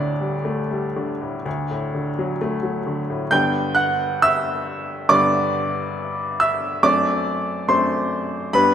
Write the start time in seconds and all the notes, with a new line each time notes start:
Already playing: D2 A2 D3 D4 D5
0.20 G3
0.45 A3
0.71 G3
0.96 D3
1.22 A2
1.46 D2
1.71 A2
1.95 D3
2.19 F#3
2.41 A3
2.63 F#3
2.87 D3
3.10 A2
3.31 G2 D3 G3 B3 G5 G6
3.75 F#5 F#6
4.22 E5 E6
5.09 G2 D3 G3 B3 D5 D6
6.40 E5 E6
6.83 F#2 A3 C4 D4 D5 D6
7.68 F#2 A3 C4 D4 C5 C6
8.53 G2 G3 B3 D4 B4 B5